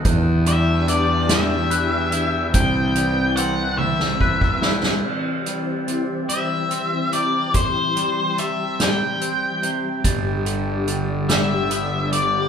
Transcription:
Already playing: B3
0.04 E2 E3 D4 G4 G6, kick, closed hi-hat
0.46 G3 E5, closed hi-hat
0.88 D4 D5 A6, closed hi-hat
1.29 E4 E5 G6, snare, closed hi-hat
1.70 B4, closed hi-hat
2.12 E4 G6, closed hi-hat
2.54 C2 C3 E3 C4 B4 G5 G6, kick, closed hi-hat
2.96 G3, closed hi-hat
3.36 C4 F#5 A6, closed hi-hat
3.78 E4 E5 G6, high tom
4.00 snare
4.21 B4, kick
4.41 kick
4.62 E4 G6, snare
4.83 snare
5.04 C3 E3 C4 G4 G6, crash
5.46 G3, closed hi-hat
5.87 C3 A6, closed hi-hat
6.29 G3 E5 G6, closed hi-hat
6.71 C4, closed hi-hat
7.13 C3 D5 G6, closed hi-hat
7.54 C3 G3 C5 G6, kick, closed hi-hat
7.96 G3, closed hi-hat
8.38 C3 E5 A6, closed hi-hat
8.79 G3 G5 G6, snare, closed hi-hat
9.21 C4, closed hi-hat
9.63 C3 G6, closed hi-hat
10.04 G1 G2 D3 A6, kick, closed hi-hat
10.46 D3, closed hi-hat
10.87 D3 A6, closed hi-hat
11.29 G3 E5 G6, snare, closed hi-hat
11.70 B3, closed hi-hat
12.12 D3 D5 G6, closed hi-hat

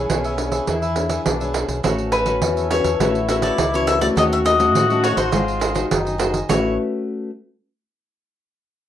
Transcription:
Already playing: C#4 G#4 C#5 E5
0.10 B1 B2 D4 G#4 B4 E5, pandeiro
0.24 G#4 B4 E5, pandeiro
0.38 D4 G#4 C#5, pandeiro
0.51 G#4 B4 E5, pandeiro
0.67 E2 E3 D4 E4 G#4 B4 E5, pandeiro
0.82 G#4 B4 E5, pandeiro
0.96 D4 G#4 C#5, muted cavaquinho stroke, pandeiro
1.09 G#4 B4 E5, pandeiro
1.25 B1 B2 D4, pandeiro
1.40 D4 G#4 B4 C#5 E5, pandeiro
1.53 C#4 D4 G#4 B4 E5, pandeiro
1.68 B1, pandeiro
1.83 A1 A3 C#4 F#4 A4 B4 C#5 E5, pandeiro
1.98 pandeiro
2.12 F#4 A4 B4 C#5 E5, pandeiro
2.26 C#4 F#4 A4 B4 C#5 E5, pandeiro
2.42 E2 E3, pandeiro
2.57 A4 C#5 E5, pandeiro
2.71 C#4 F#4 A4 B4 C#5 E5, pandeiro
2.84 E2 A4 C#5 E5, pandeiro
3.00 A1 A3 C#4 E4 F#4 A4 B4 C#5 E5, pandeiro
3.15 pandeiro
3.29 C#4 F#4 A4 B4 C#5 E5, pandeiro
3.42 F#4 A4 C#5 D5 E5, pandeiro
3.58 C#2 E3, pandeiro
3.73 C#4 F#4 A4 B4 C#5 E5, pandeiro
3.87 F#4 A4 C#5 E5, pandeiro
3.99 A3 C#4 F#4 A4 C#5 D5 E5, pandeiro
4.16 D#2 D#3 F#4 A4 C#5 D#5, pandeiro
4.32 E5, pandeiro
4.45 F#4 A4 C#5 D#5, pandeiro
4.59 A3 C#4 F#4 A4 C#5 D#5, pandeiro
4.75 A2 D#3, pandeiro
4.90 A3 C#4 F#4 A4 C#5 D#5, pandeiro
5.03 F#4 A4 C#5 D#5, pandeiro
5.16 A1 D#4 A4 C5 C#5 D#5, pandeiro
5.32 G#1 G#3 F4 F#4 G#4 C5 D#5, pandeiro
5.48 pandeiro
5.60 F#4 G#4 C5 D#5, pandeiro
5.74 D#4 F#4 G#4 C5 D#5, pandeiro
5.91 F#1 D#3 D#4, pandeiro
6.05 G#4 C5 D#5, pandeiro
6.18 D#4 F#4 G#4 C5 D#5, pandeiro
6.34 G#4 C5 D#5, pandeiro
6.49 A1 A3 C#4 E4 F#4 A4 B4 C#5 E5, pandeiro

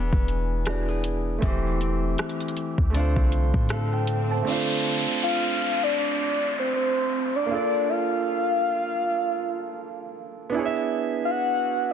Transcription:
Already playing: E1 E3 B3 D4 E4 G#4 D5
0.13 E1, kick
0.28 closed hi-hat
0.65 B3 D4 E4 F#4 G#4, cross-stick, closed hi-hat
0.69 D5
0.89 G#4
1.04 closed hi-hat
1.38 A3 C4, kick, closed hi-hat
1.42 E1 E3 E4 G4, swell
1.48 C5
1.80 C4, closed hi-hat
2.18 cross-stick, closed hi-hat
2.29 closed hi-hat
2.40 closed hi-hat
2.48 closed hi-hat
2.57 closed hi-hat
2.78 D2, kick
2.90 A3 C4
2.94 D3 D4 F4, closed hi-hat
2.99 C5
3.16 C2, kick
3.32 closed hi-hat
3.54 A2, kick
3.69 A4 F5, cross-stick, closed hi-hat
3.93 G5
4.07 closed hi-hat
4.31 C5 A5
4.42 A3 C4, downlifter
4.47 D4 F4
4.52 C5
5.23 F5
5.83 D5
5.99 D5
6.59 C5
6.76 C5
7.36 D5
7.46 A#3 D4
7.51 F4 A4 D5
7.55 D5
7.89 F5
10.50 B3 D4
10.54 E4 G#4
10.59 C#5
10.65 E5
11.25 F5
11.31 F#5

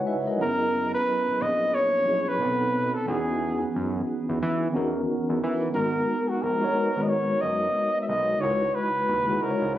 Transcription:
Already playing: C#3 G#3 D#4 E4 F#4 B4 C#5 D#5 F#5 G#5
0.07 B4 E5
0.27 A#4 D#5
0.37 F#3 C#4 E4 G#4
0.42 F#1 B3 A#4
0.94 B4
1.28 A#1
1.41 A#1 D#5
1.74 C#5
2.05 F#3 C#4 E4 G#4
2.10 C#5
2.28 B4
2.39 B1 B2 B3 D#4 A4
2.44 C4
2.94 A4
3.05 E2 E3 B3 C#4 D#4 F#4 G#4
3.10 G#4
3.76 F#2
4.29 E2
4.42 E3
4.72 E3 B3 C#4 D#4 F#4
4.76 E2 A#4
5.10 E2
5.29 E2
5.44 E3
5.73 G#1 G#3 D#4 F#4 A#4
5.77 B3
6.29 F#4
6.42 A#1 A#4
6.59 G#3 D#4 F#4 A#4
6.64 C#5
6.73 G#3 D#4 F#4
6.77 A#4 B4
6.96 G#1
7.03 D#5
7.08 C#5
7.41 F#1 D#5
8.01 E5
8.08 B1 D#5
8.38 C#3 G#3 D#4 E4 F#4 C#5
8.43 C#2 A#4
8.50 B4
8.75 B4
9.09 D#2
9.25 C#3 G#3 D#4 E4 F#4
9.30 G#4
9.39 C#3 G#3 D#4 E4 F#4 A#4
9.43 C5
9.50 C#5
9.62 C#2

